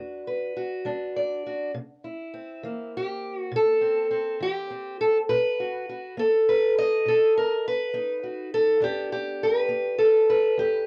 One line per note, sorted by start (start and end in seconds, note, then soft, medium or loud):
0.00 0.49 E2 medium
0.00 0.85 D4 medium
0.00 0.55 F#4 medium
0.00 0.26 B4 medium
0.27 1.15 B4 medium
0.57 1.44 F#4 medium
0.85 1.38 G3 medium
0.85 1.70 D4 medium
1.16 1.71 D5 medium
1.46 1.71 F#4 medium
1.74 2.27 C3 medium
2.04 2.92 E4 soft
2.34 3.80 C4 soft
2.63 3.15 E3 medium
2.63 5.25 A#3 soft
2.97 3.37 G4 medium
3.37 3.53 F#4 medium
3.52 4.04 C3 medium
3.56 4.41 A4 medium
3.81 4.09 C4 soft
4.11 4.69 C4 soft
4.41 4.92 E3 medium
4.41 4.99 G4 medium
4.71 5.25 C4 soft
5.01 5.17 A4 medium
5.29 5.81 B2 medium
5.29 6.46 B4 medium
5.60 5.89 F#4 soft
5.89 6.19 F#4 soft
6.17 6.69 B3 medium
6.17 7.06 A4 medium
6.49 6.76 B4 medium
6.78 7.65 D#5 loud
7.05 7.57 B2 medium
7.05 7.35 A4 medium
7.37 7.65 A#4 medium
7.68 8.83 B4 medium
7.94 8.46 B3 medium
7.94 8.78 D#4 soft
8.23 8.54 F#4 soft
8.54 8.82 A4 medium
8.80 9.33 E2 medium
8.80 9.68 B3 medium
8.80 10.87 D4 soft
8.80 9.11 G4 medium
9.12 9.98 G4 medium
9.43 10.28 B4 medium
9.69 10.22 B3 medium
9.98 10.58 A4 medium
10.30 10.87 B4 medium
10.57 10.87 E2 medium
10.57 10.87 G4 medium